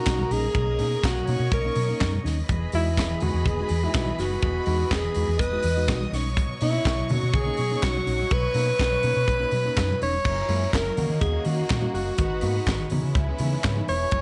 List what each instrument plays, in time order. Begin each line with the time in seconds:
Already playing: string section A#3 B3 D#5, alto saxophone F#4, violin section A#4 A#5
0.06 fingered electric bass B1, tine electric piano C#4 D#4, kick, snare, clap, closed hi-hat, high conga
0.19 tine electric piano B2 F#3, high conga
0.31 fingered electric bass A#1, string section C#4, tine electric piano C#4 D#4, alto saxophone G#4, open hi-hat
0.43 high conga
0.55 fingered electric bass B1, tine electric piano B2 F#3, kick, closed hi-hat, muted conga
0.79 fingered electric bass B2, tine electric piano A#3 C#4 D#4, open hi-hat
0.92 tine electric piano C#4 D#4
1.04 fingered electric bass B1, alto saxophone F#4, kick, snare, clap, closed hi-hat, high conga
1.16 tine electric piano B2 F#3
1.27 fingered electric bass B2, tine electric piano A#3 C#4 D#4, violin section C#5 C#6, open hi-hat
1.40 fingered electric bass B2
1.52 fingered electric bass B1, alto saxophone A#4, kick, closed hi-hat, muted conga
1.64 tine electric piano A#3 C#4 D#4
1.75 fingered electric bass B2, tine electric piano B2 F#3, open hi-hat
1.88 tine electric piano A#3 C#4 D#4
2.00 fingered electric bass F#2, tine electric piano C#4 D#4, kick, snare, clap, closed hi-hat, high conga
2.12 tine electric piano B2 F#3, high conga
2.24 fingered electric bass D#2, tine electric piano C#4 D#4, snare, open hi-hat
2.38 high conga
2.48 fingered electric bass E1, tine electric piano E3, string section E3 B3 G#4, violin section B4 B5, kick, closed hi-hat, muted conga
2.72 fingered electric bass E2, tine electric piano G#3 D#4 F#4, alto saxophone E4, open hi-hat
2.86 tine electric piano D#4 F#4
2.97 fingered electric bass E1, tine electric piano D#4 F#4, kick, snare, clap, closed hi-hat, high conga
3.10 tine electric piano E3
3.20 fingered electric bass E2, tine electric piano G#3 D#4 F#4, alto saxophone F#4, open hi-hat, low conga
3.34 fingered electric bass E2
3.46 fingered electric bass E1, alto saxophone G#4, kick, closed hi-hat, muted conga, low conga
3.59 tine electric piano G#3 D#4 F#4
3.69 fingered electric bass E2, tine electric piano E3, open hi-hat
3.83 tine electric piano G#3 D#4 F#4, alto saxophone E4
3.94 fingered electric bass B1, tine electric piano D#4 F#4, kick, snare, clap, closed hi-hat, high conga
4.06 tine electric piano E3, high conga
4.19 fingered electric bass F#1, tine electric piano D#4 F#4, alto saxophone F#4, snare, open hi-hat
4.31 high conga
4.42 fingered electric bass E1, tine electric piano E3, kick, closed hi-hat, muted conga
4.66 fingered electric bass E2, tine electric piano G#3 D#4 F#4, open hi-hat
4.80 tine electric piano D#4 F#4
4.91 fingered electric bass E1, alto saxophone G#4, kick, snare, clap, closed hi-hat, high conga
5.04 tine electric piano E3
5.14 fingered electric bass E2, tine electric piano G#3 D#4 F#4, open hi-hat
5.28 fingered electric bass E2
5.39 fingered electric bass E1, alto saxophone B4, violin section D#5 D#6, kick, closed hi-hat, muted conga
5.52 tine electric piano G#3 D#4 F#4
5.63 fingered electric bass E2, tine electric piano E3, open hi-hat, muted conga
5.77 tine electric piano G#3 D#4 F#4
5.88 fingered electric bass B1, tine electric piano D#4 F#4, kick, snare, clap, closed hi-hat, high conga
6.00 tine electric piano E3, high conga
6.12 fingered electric bass B1, string section F#3, tine electric piano C#4 D#4, violin section C#5 C#6, snare, open hi-hat
6.26 high conga
6.37 tine electric piano B2 F#3, kick, closed hi-hat, muted conga
6.61 fingered electric bass B2, tine electric piano A#3 C#4 D#4, alto saxophone E4, open hi-hat
6.74 tine electric piano C#4 D#4
6.85 fingered electric bass B1, kick, snare, clap, closed hi-hat, high conga
6.99 tine electric piano B2 F#3
7.09 fingered electric bass B2, tine electric piano A#3 C#4 D#4, alto saxophone F#4, open hi-hat, low conga
7.23 fingered electric bass B2
7.34 fingered electric bass B1, alto saxophone G#4, kick, closed hi-hat, muted conga, low conga
7.46 tine electric piano A#3 C#4 D#4
7.57 fingered electric bass B2, tine electric piano B2 F#3, open hi-hat, muted conga
7.71 tine electric piano A#3 C#4 D#4
7.82 fingered electric bass B1, tine electric piano C#4 D#4, alto saxophone F#4, kick, snare, clap, closed hi-hat, high conga
7.95 tine electric piano B2 F#3, high conga
8.06 fingered electric bass A#1, tine electric piano C#4 D#4, string section C#4, open hi-hat
8.20 high conga
8.31 fingered electric bass B1, tine electric piano B2 F#3, alto saxophone B4, kick, closed hi-hat, muted conga
8.54 fingered electric bass B2, tine electric piano A#3 C#4 D#4, open hi-hat
8.67 tine electric piano C#4 D#4
8.79 fingered electric bass B1, tine electric piano C#4 D#4, kick, snare, clap, closed hi-hat, high conga
8.91 tine electric piano B2 F#3
9.03 fingered electric bass B2, tine electric piano A#3 C#4 D#4, open hi-hat
9.16 fingered electric bass B2
9.27 fingered electric bass B1, violin section B4 B5, kick, closed hi-hat, muted conga
9.40 tine electric piano A#3 C#4 D#4
9.51 fingered electric bass B2, tine electric piano B2 F#3, open hi-hat, muted conga
9.65 tine electric piano A#3 C#4 D#4
9.76 fingered electric bass F#2, tine electric piano C#4 D#4, kick, snare, clap, closed hi-hat, high conga
9.89 tine electric piano B2 F#3, high conga
10.01 fingered electric bass E1, tine electric piano C#4 D#4, alto saxophone C#5, open hi-hat
10.13 high conga
10.24 fingered electric bass F#1, tine electric piano F#3, string section F#3 C#4 E4 A#4, violin section C#4 A#4 E5, kick, crash, muted conga
10.49 fingered electric bass F#2, tine electric piano G#3 A#3 E4, open hi-hat
10.62 tine electric piano A#3 E4
10.73 fingered electric bass F#1, tine electric piano A#3 E4, alto saxophone A#4, kick, snare, clap, closed hi-hat, high conga
10.86 tine electric piano F#3
10.97 fingered electric bass D#3, string section D#3 A#3 F#4, violin section A#3 F#4 D#5, tine electric piano A#3 C#4 F#4, open hi-hat, low conga
11.09 fingered electric bass D#3
11.21 fingered electric bass D#2, tine electric piano D#3, alto saxophone G#4, kick, closed hi-hat, muted conga, low conga
11.45 fingered electric bass D#3, tine electric piano A#3 C#4 F#4, alto saxophone F#4, open hi-hat, muted conga
11.58 tine electric piano C#4 F#4
11.69 fingered electric bass A#2, tine electric piano D#3, kick, snare, clap, closed hi-hat, high conga
11.81 tine electric piano A#3 C#4 F#4, high conga
11.94 fingered electric bass F#1, tine electric piano C#4 F#4, alto saxophone F#4, open hi-hat
12.18 fingered electric bass G#1, tine electric piano G#2 D#3, string section G#3 D#4 B4, violin section D#4 B4 F#5, kick, closed hi-hat, muted conga
12.41 fingered electric bass G#2, tine electric piano A#3 B3 F#4, open hi-hat
12.55 tine electric piano B3 F#4
12.67 fingered electric bass G#1, tine electric piano B3 F#4, kick, snare, clap, closed hi-hat, high conga
12.80 tine electric piano G#2 D#3
12.90 string section C#3 B3 E4, fingered electric bass C#3, tine electric piano E3 B3 D#4, violin section C#4 B4 E5, open hi-hat, low conga
13.03 fingered electric bass C#3
13.15 fingered electric bass C#2, tine electric piano C#3, kick, closed hi-hat, muted conga
13.38 fingered electric bass C#3, tine electric piano E3 B3 D#4, open hi-hat, muted conga, low conga
13.53 tine electric piano B3 D#4
13.63 fingered electric bass G#2, tine electric piano C#3, kick, snare, clap, closed hi-hat, high conga
13.76 tine electric piano E3 B3 D#4, high conga
13.88 fingered electric bass E1, tine electric piano B3 D#4, alto saxophone C#5, open hi-hat
14.11 fingered electric bass F#1, string section F#3 C#4 E4 A#4, tine electric piano F#3, violin section E4 C#5 G#5, kick, closed hi-hat, muted conga